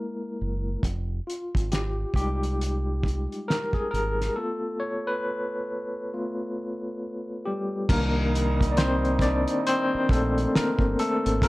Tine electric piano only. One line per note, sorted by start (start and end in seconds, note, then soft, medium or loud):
0.00 0.36 G#3 soft
0.00 0.37 A#3 soft
0.00 0.37 E4 medium
0.00 0.37 A#4 medium
1.27 1.73 F4 medium
1.72 2.15 G4 medium
2.16 4.33 G3 soft
2.16 4.33 G#3 soft
2.16 4.34 D#4 soft
2.16 3.52 G4 medium
3.48 3.75 A#4 medium
3.74 3.93 G#4 medium
3.91 4.33 A#4 medium
4.36 5.65 A3 soft
4.36 5.65 B3 soft
4.36 5.66 F4 soft
4.36 4.82 A4 medium
4.80 5.07 C#5 medium
5.07 7.42 B4 medium
6.14 6.54 A3 soft
6.14 6.54 B3 soft
6.14 6.54 F4 medium
7.45 7.87 G3 medium
7.45 7.91 G4 medium
7.89 8.52 D#3 medium
7.89 8.69 A#3 medium
7.89 8.52 D4 medium
7.89 8.75 A#4 medium
8.72 8.78 D5 medium
8.78 9.00 C4 medium
8.78 8.98 C5 loud
9.22 9.64 D4 medium
9.22 9.63 D5 medium
9.67 10.08 C4 medium
9.67 10.12 C5 loud
10.11 10.52 A3 medium
10.11 10.56 A4 medium
10.56 10.97 A#3 medium
10.56 10.96 A#4 medium
11.00 11.41 A3 medium
11.00 11.43 A4 medium
11.43 11.48 A#3 medium
11.43 11.48 F4 medium
11.43 11.48 A4 medium
11.43 11.48 A#4 medium